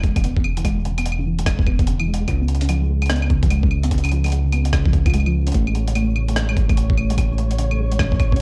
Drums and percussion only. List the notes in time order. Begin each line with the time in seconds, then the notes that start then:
0.03 kick, closed hi-hat
0.16 kick, closed hi-hat, claves
0.24 closed hi-hat
0.37 kick
0.44 claves
0.57 closed hi-hat
0.65 kick, closed hi-hat, claves
0.85 closed hi-hat
0.98 closed hi-hat, claves
1.06 closed hi-hat
1.12 claves
1.39 closed hi-hat
1.46 kick, cross-stick, closed hi-hat, claves
1.59 kick
1.67 kick, claves
1.79 kick, closed hi-hat
1.87 closed hi-hat
2.00 claves
2.14 closed hi-hat
2.28 kick, closed hi-hat, claves
2.48 closed hi-hat
2.55 closed hi-hat
2.61 closed hi-hat
2.65 closed hi-hat
2.69 closed hi-hat, claves
3.02 closed hi-hat, claves
3.06 cross-stick, closed hi-hat
3.10 closed hi-hat
3.16 closed hi-hat
3.22 claves
3.30 kick, closed hi-hat
3.43 kick, closed hi-hat
3.50 closed hi-hat, claves
3.63 kick
3.71 claves
3.83 closed hi-hat
3.91 kick, closed hi-hat
3.98 closed hi-hat
4.04 closed hi-hat, claves
4.09 closed hi-hat, claves
4.24 closed hi-hat, claves
4.26 closed hi-hat
4.28 closed hi-hat
4.30 closed hi-hat
4.32 closed hi-hat
4.53 closed hi-hat, claves
4.65 closed hi-hat
4.73 kick, cross-stick, closed hi-hat, claves
4.85 kick
4.93 kick, closed hi-hat
5.06 kick, closed hi-hat, claves
5.10 closed hi-hat, claves
5.14 claves
5.20 claves
5.26 claves
5.47 closed hi-hat
5.52 kick, closed hi-hat
5.55 closed hi-hat
5.67 claves
5.75 closed hi-hat
5.88 closed hi-hat
5.95 closed hi-hat, claves
6.16 claves
6.28 closed hi-hat
6.36 cross-stick, closed hi-hat
6.49 claves
6.57 kick, closed hi-hat
6.69 kick, closed hi-hat, claves
6.77 closed hi-hat
6.90 kick
6.97 claves
7.10 closed hi-hat
7.18 kick, closed hi-hat, claves
7.38 closed hi-hat
7.51 closed hi-hat
7.59 closed hi-hat
7.71 claves
7.92 closed hi-hat
7.99 kick, cross-stick, claves
8.12 kick
8.20 kick, closed hi-hat, claves
8.32 kick, closed hi-hat